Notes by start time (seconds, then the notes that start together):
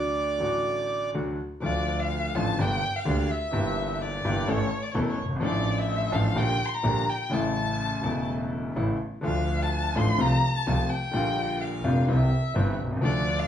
Already playing: D2 D3 F#3 A3 F#4 D5
0.38 A1 A2 D3 F#3 A3 F#4
1.14 D2 D3 F#3 A3 F#4
1.62 D2 D3 F3 A3 F4 D5
2.00 F5
2.35 A1 A2 D3 F3 A3 F4 A5
2.58 G1 G2 D3 G3 A#3 G4 G5
2.96 F5
3.05 D2 D3 G3 A#3 G4
3.31 E5
3.51 G1 G2 E3 G3 A#3 G4
3.95 E5
4.01 D5
4.24 G1 G2 E3 G3 A#3 G4
4.47 A1 A2 E3 A3 C#4 A4 C#5
4.82 D5
4.92 E1 E2 E3 A3 C#4 A4 C#5
5.01 A#4
5.09 C#5
5.19 G1
5.25 F#1
5.30 G1
5.36 G#1 F3
5.41 A1 A2 A3 D4 A4 D5
5.78 E5
6.12 A1 A2 F3 A3 D4 A4 F5
6.35 A#1 A#2 D3 G3 A#3 G4 G5
6.65 C6
6.74 A#5
6.83 A#1 A#2 D3 G3 A#3 G4
7.09 G5
7.30 A1 A2 C#3 E3 A3 E4 A5
8.01 E1 E2 C#3 E3 A3 E4
8.76 A1 A2 C#3 E3 A3 E4
9.21 D2 D3 F3 A3
9.25 F4 F5
9.62 A5
9.95 A1 A2 D3 F3 A3 F4 C6
10.18 C2 C3 F3 A3 F4 A#5
10.56 A5
10.67 C2 C3 F3 A3 F4
10.90 G5
11.11 A#1 A#2 D3 G3 A#3 F4
11.61 F5
11.84 F1 F2 D3 G3 A#3 F4
12.08 C2 C3 E3 G3 C4 G4 E5
12.54 G1 G2 E3 G3 C4 G4
12.78 C2
12.85 B1
12.91 C2
12.97 C#2
13.01 D2 D3 F3 A3 D4 A4 D5
13.39 F5